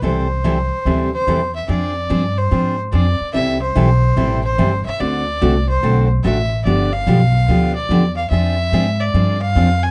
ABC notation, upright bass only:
X:1
M:4/4
L:1/8
Q:"Swing" 1/4=145
K:C
V:1 name="Upright bass" clef=bass
C,,4 D,,2 E,,2 | F,,2 G,,2 _A,,2 F,, z | C,,2 B,,,2 A,,,2 G,,, z | D,,2 C,,2 B,,,2 A,,,2 |
G,,,2 B,,,2 D,,2 E,,2 | F,,2 _A,,2 G,,2 F,,2 |]